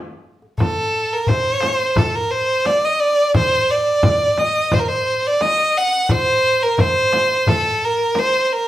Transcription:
0.42 darbuka ka
0.58 A4, darbuka dum, frame drum
1.13 A#4
1.27 C5, darbuka dum, frame drum
1.61 darbuka tek, frame drum
1.96 A4, darbuka dum, frame drum
2.15 A#4
2.31 C5
2.65 D5, darbuka tek, frame drum
2.83 D#5, darbuka ka
3.00 D5
3.34 C5, frame drum, darbuka dum
3.71 D5
4.03 frame drum, darbuka dum
4.38 D#5, frame drum
4.72 C5, frame drum, darbuka dum
4.79 A#4
4.88 C5
5.27 D5
5.41 D#5, darbuka tek, frame drum
5.58 darbuka ka
5.78 F#5
6.09 C5, frame drum, darbuka dum
6.63 A#4
6.78 C5, darbuka dum, frame drum
7.13 darbuka tek, frame drum
7.47 A4, darbuka dum, frame drum
7.85 A#4
8.15 C5, darbuka tek, frame drum
8.33 darbuka ka
8.44 C5
8.53 A#4

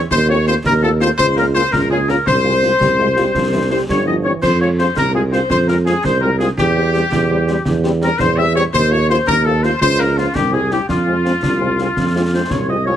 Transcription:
0.11 D#2 C5, concert bass drum, snare, crash
0.29 A3 C4 F4 C#5
0.47 A3 C4 F4 C5, snare
0.64 D#2 A#4, concert bass drum, snare
0.82 A3 C4 F4 A4
1.00 A3 C4 F4 C5, snare
1.18 C#2 C5, concert bass drum, snare
1.36 A#3 C#4 F4 A#4, snare
1.55 A#3 C#4 F4 C5, snare
1.72 C#2 A#4, concert bass drum, snare
1.90 A#3 C#4 F4 G#4
2.09 A#3 C#4 F4 A#4, snare
2.26 C2 C5, concert bass drum, snare
2.45 G#3 C4 F4
2.63 G#3 C4 F4, snare
2.80 C2 G3, concert bass drum, snare
2.98 G#3 C4 F4
3.16 G3 G#3 C4 F4, snare
3.34 C2 F3, concert bass drum, snare
3.52 E3 G3 C4 E4
3.70 G3 C4 E4 C5
3.88 G1 G3 C#5, concert bass drum, snare
4.05 F3 G3 C4 E4 D#5
4.24 E3 G3 C4 E4 C#5
4.42 F2 C5, concert bass drum, snare, crash
4.60 G#3 C4 F4 C#5
4.78 G#3 C4 F4 C5, snare
4.96 C2 A#4, concert bass drum, snare
5.14 G#3 C4 F4 G#4
5.32 G#3 C4 F4 C5, snare
5.50 F2 C5, concert bass drum, snare
5.68 G#3 C4 F4 A#4, snare
5.85 G#3 C4 F4 G#4, snare
6.04 C2 C5, concert bass drum, snare
6.21 G#3 C4 F4 A#4
6.39 G#3 C4 F4 G#4, snare
6.58 E2 G4, concert bass drum, snare
6.76 G3 C4 G4
6.94 G3 C4 G4, snare
7.12 E2, concert bass drum, snare
7.30 G3 C4 G4
7.48 G3 C4 G4, snare
7.65 E2, concert bass drum, snare
7.84 G3 C4 G4, snare
8.01 G3 C4 G4 A#4, snare
8.19 E2 C5, concert bass drum, snare
8.37 G3 C4 G4 E5
8.55 G3 C4 G4 C#5, snare
8.73 D#2 C5, concert bass drum, snare, crash
8.91 F3 A3 F4 C#5
9.09 F3 A3 F4 C5, snare
9.27 D#2 A#4, concert bass drum, snare
9.45 F3 A3 F4 A4
9.63 F3 A3 F4 C5, snare
9.81 C#2 C5, concert bass drum, snare
9.99 F3 A#3 F4 A#4, snare
10.17 F3 A#3 F4, snare
10.35 C2 G4, concert bass drum, snare
10.52 G3 C4 E4 G#4
10.71 G3 C4 E4 G4, snare
10.88 F2 F4, concert bass drum, snare
11.06 G#3 C4 F4
11.24 G#3 C4 F4, snare
11.42 C2, concert bass drum, snare
11.61 G#3 C4 F4
11.78 G#3 C4 F4, snare
11.97 F2, concert bass drum, snare
12.14 G#3 C4 F4
12.33 G#3 C4 F4 C5
12.50 C2 C#5, concert bass drum, snare
12.69 G#3 C4 F4 D#5
12.86 G#3 C4 F4 C#5

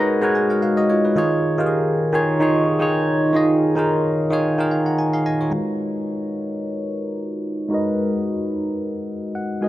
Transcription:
Already playing: G#3 D#4 F#4 A#4 B4 C#5 D#5
0.21 G#3 D#4 F#4 A#4 B4 C#5
0.35 B4 G#5
0.50 A#4 F#5
0.62 G#4 F5
0.77 F#4 D#5
0.90 F4 C#5
1.05 D#4 B4
1.15 D#3 D#4 F4 G#4 C#5
1.58 D#3 D#4 F4 G4 A#4
1.66 G#4
2.12 D#3 D#4 F4 G#4 C#5
2.39 D#3 D#4 F4 G#4 C#5
2.79 D#3 D#4 F4 G#4 C#5
3.34 D#3 D#4 F4 G#4 D#5
3.76 D#3 D#4 F4 G#4 A#4
4.30 D#3 D#4 F4 G#4 C#5
4.58 D#3 D#4 F4 G#4 A#4
4.71 F5
4.86 F#5
4.99 G#5
5.13 G#4 F5
5.26 D#5 G#5
5.41 F4 C#5
5.50 G#3 D#4 F#4 A#4
5.55 B4 C#5
7.69 G#3 D#4 F#4 A#4
7.73 B4 D#5
9.35 F#5
9.61 G#3 D#4 F#4 A#4 B4 D#5 G#5

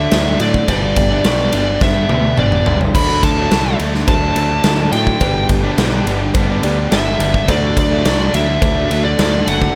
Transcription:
Already playing: D3 A3 D4 F#4 A4 D5 E5
0.11 D2 D3 F#3 A3, snare, ride, cowbell
0.16 D4
0.39 A2 D3 F#3 A3 F#4 D5, ride
0.44 D4
0.54 muted overdriven electric guitar stroke, kick
0.67 G1 G2 D3 G3 B3 D4 G4 B4 D5, kick, ride, cowbell
0.71 D4
0.83 muted overdriven electric guitar stroke
0.96 G1 G3 B3 D4 G4, kick, ride
1.10 G3 B3 D4 G4 B4 E5
1.24 B1 G2 D3 G3 B3 D4 G4 D5, snare, ride, cowbell
1.52 G1 D3 G3 B3 D4 G4, ride
1.68 muted overdriven electric guitar stroke
1.79 G2 D3 G3 B3 G4 E5, kick, snare, cowbell
1.83 D4
1.96 G3 B3 D4
2.09 D2 D3 G3 B3 D4 G4 B4 D5, high tom
2.13 D4
2.23 G3 B3 D4, muted overdriven electric guitar stroke
2.38 G1 G2 D3 G3 B3 D4 G4 D5, mid tom, cowbell
2.52 mid tom
2.66 G1 D3 G3 B3 D4 G4, floor tom
2.81 muted overdriven electric guitar stroke, floor tom
2.93 D2 D3 F#3 A3 D4 F#4 A4 D5 B5, kick, ride, cowbell, crash
3.11 muted overdriven electric guitar stroke
3.23 D2 A3 D4 F#4 A5, kick, ride
3.37 F#3 A3 D4 F#4 A4 E5
3.50 C2 D3 F#3 A3 D4 F#4, snare, ride, cowbell
3.79 D2 D3 F#3 A3 D4 F#4, ride
3.94 muted overdriven electric guitar stroke, snare
4.07 D2 D3 F#3 A3 D4 F#4 A5, kick, ride, cowbell
4.22 F#3 A3 D4
4.34 D2 D3 F#3 A3 D4 F#4 A4 C5, ride
4.39 D4
4.50 F#3 A3 D4, muted overdriven electric guitar stroke
4.64 D2 D3 F#3 A3 D4 F#4, snare, ride, cowbell
4.92 A2 D3 F#3 A3 D4 F#4 G5, ride
5.07 muted overdriven electric guitar stroke, kick
5.20 G1 G2 D3 G3 B3 D4 G4 B4 D5, kick, ride, cowbell
5.35 muted overdriven electric guitar stroke
5.49 G1 G3 B3 D4 G4, kick, ride
5.63 G3 B3 D4 G4 B4 D5
5.78 B1 G2 D3 G3 B3 D4 G4, snare, ride, cowbell
6.06 G1 D3 G3 B3 D4 G4, ride
6.20 muted overdriven electric guitar stroke
6.34 G2 D3 G3 B3 D4 G4, kick, ride, cowbell
6.50 G3 B3 D4
6.63 D2 D3 G3 B3 D4 G4 B4 D5, ride
6.76 G3 B3 D4, muted overdriven electric guitar stroke
6.91 G1 G2 D3 G3 B3 D4 G4 E5, snare, ride, cowbell
7.20 G1 D3 G3 B3 D4 G4, ride
7.33 muted overdriven electric guitar stroke, kick
7.48 D2 D3 F#3 A3 D4 F#4 A4 D5, kick, ride, cowbell
7.62 muted overdriven electric guitar stroke
7.76 D2 A3 D4 F#4 D5, kick, ride
7.91 F#3 A3 D4 F#4 A4 E5
8.04 C2 D3 F#3 A3 D4 F#4, snare, ride, cowbell
8.34 D2 D3 F#3 A3 D4 F#4 E5, ride
8.48 muted overdriven electric guitar stroke
8.62 D2 D3 F#3 A3 D4 F#4, kick, ride, cowbell
8.76 F#3 A3 D4
8.90 D2 D3 F#3 A3 D4 F#4 A4 D5, ride
9.03 F#3 A3 D4 D5, muted overdriven electric guitar stroke
9.19 D2 D3 F#3 A3 D4 F#4, snare, ride, cowbell
9.46 F#1 D3 F#3 A3 D4 F#4 F#5, ride
9.61 muted overdriven electric guitar stroke, kick

